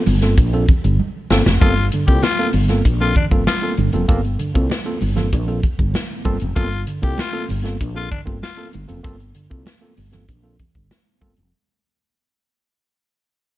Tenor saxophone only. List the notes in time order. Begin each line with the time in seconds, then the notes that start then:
1.61 F4
2.07 G4
2.23 F4
3.01 F4
3.17 D4
3.47 F4
6.56 F4
7.04 G4
7.20 F4
7.96 F4
8.11 D4
8.43 F4